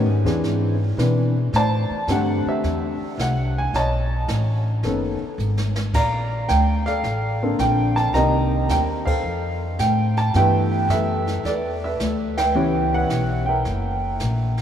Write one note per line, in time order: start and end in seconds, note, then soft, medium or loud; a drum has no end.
0.00 0.22 D#3 medium
0.00 0.22 B3 medium
0.00 0.22 C#4 medium
0.00 0.22 G4 medium
0.00 0.40 B4 medium
0.00 0.40 D5 medium
0.06 0.23 G#2 medium
0.24 0.41 E2 medium
0.24 0.73 E3 medium
0.24 0.73 C4 medium
0.24 0.73 D4 medium
0.24 0.73 G#4 medium
0.24 snare soft
0.42 0.96 G#2 medium
0.42 brush sweep soft
0.42 snare soft
0.97 1.51 B2 medium
0.97 1.32 E3 medium
0.97 1.32 C4 medium
0.97 1.32 D4 medium
0.97 1.32 B4 medium
0.97 snare medium
0.97 hi-hat pedal soft
1.53 1.88 A2 medium
1.53 2.47 C5 medium
1.53 2.11 A5 loud
1.53 brush sweep medium
1.53 snare medium
1.57 2.61 D5 medium
1.90 muted upright bass stroke soft
2.07 2.43 G2 medium
2.07 2.94 D3 medium
2.07 2.94 A3 medium
2.07 2.94 C4 medium
2.07 2.47 G4 medium
2.07 snare medium
2.07 hi-hat pedal medium
2.12 2.45 F#5 medium
2.45 3.53 G4 medium
2.45 3.53 C5 medium
2.45 3.22 E5 medium
2.45 muted upright bass stroke soft
2.63 2.98 E2 medium
2.63 brush sweep medium
2.63 snare soft
3.00 muted upright bass stroke soft
3.17 3.71 C2 medium
3.17 3.58 F#5 medium
3.17 snare medium
3.17 hi-hat pedal medium
3.58 3.73 G#5 medium
3.73 4.26 B1 medium
3.73 4.81 C#5 medium
3.73 4.81 D#5 medium
3.73 4.26 A5 medium
3.73 brush sweep soft
3.73 snare soft
4.28 4.82 A1 medium
4.28 snare medium
4.28 hi-hat pedal medium
4.83 5.18 F#1 medium
4.83 5.18 D#3 medium
4.83 5.18 B3 medium
4.83 5.18 C#4 medium
4.83 5.18 A4 medium
4.83 brush sweep medium
4.83 snare soft
5.22 muted upright bass stroke soft
5.38 5.92 G#1 medium
5.38 hi-hat pedal soft
5.57 snare medium
5.76 snare medium
5.93 6.47 A#1 medium
5.93 6.86 D5 medium
5.93 6.85 F5 medium
5.93 6.51 A#5 loud
5.93 brush sweep soft
5.93 kick medium
5.93 snare soft
5.93 crash medium
6.49 7.02 D2 medium
6.49 6.87 G5 loud
6.49 snare medium
6.49 hi-hat pedal soft
6.86 7.42 A4 medium
6.86 7.93 D5 medium
6.86 7.55 F5 loud
6.86 snare soft
7.03 7.57 A1 medium
7.03 brush sweep medium
7.03 snare soft
7.43 8.11 D3 medium
7.43 8.11 A#3 medium
7.43 8.11 C4 medium
7.43 8.11 A4 medium
7.59 8.12 A#1 medium
7.59 7.94 G5 loud
7.59 snare medium
7.59 hi-hat pedal medium
7.96 8.12 A5 medium
7.96 snare soft
8.13 8.67 C2 medium
8.13 9.00 D#3 medium
8.13 9.00 A#3 medium
8.13 9.00 C4 medium
8.13 9.00 G4 medium
8.13 9.21 D#5 medium
8.13 8.69 G5 medium
8.13 8.71 A#5 loud
8.13 brush sweep medium
8.13 snare soft
8.68 9.22 D#2 medium
8.68 8.79 G5 loud
8.68 snare medium
8.68 hi-hat pedal medium
9.06 10.13 A4 medium
9.06 10.13 C5 medium
9.06 9.75 F5 medium
9.06 kick medium
9.06 crash medium
9.23 9.77 F2 medium
9.23 brush sweep medium
9.79 10.32 A2 medium
9.79 10.18 G5 loud
9.79 snare medium
9.79 hi-hat pedal medium
10.17 10.35 A5 medium
10.17 snare soft
10.34 10.88 G2 medium
10.34 11.20 E3 medium
10.34 11.20 A3 medium
10.34 11.20 B3 medium
10.34 11.20 G4 medium
10.34 10.89 E5 medium
10.34 10.87 G5 loud
10.34 brush sweep medium
10.34 snare soft
10.38 10.91 B4 medium
10.88 11.42 F#2 medium
10.88 11.46 A4 medium
10.88 11.46 B4 medium
10.88 11.47 E5 loud
10.88 snare medium
10.88 hi-hat pedal medium
11.27 snare soft
11.43 11.97 E2 medium
11.43 11.84 B4 medium
11.43 11.84 D5 medium
11.43 brush sweep soft
11.43 snare soft
11.48 11.84 A4 medium
11.84 12.52 A4 medium
11.84 12.37 B4 medium
11.84 12.35 E5 medium
11.99 12.53 D2 medium
11.99 snare medium
11.99 hi-hat pedal medium
12.37 12.95 B4 medium
12.37 13.44 E5 medium
12.37 12.94 G5 loud
12.37 snare medium
12.37 ride medium
12.55 13.08 C#2 medium
12.55 13.40 E3 medium
12.55 13.40 B3 medium
12.55 13.40 C#4 medium
12.55 13.40 G4 medium
12.55 brush sweep medium
12.94 13.63 B4 medium
12.94 13.50 F#5 loud
13.09 13.63 B1 medium
13.09 snare medium
13.09 hi-hat pedal medium
13.46 14.54 A#4 medium
13.46 14.54 E5 medium
13.46 14.53 G5 medium
13.65 14.18 F#1 medium
13.65 brush sweep medium
13.65 snare soft
14.20 14.62 A#1 medium
14.20 snare medium
14.20 hi-hat pedal medium
14.57 snare soft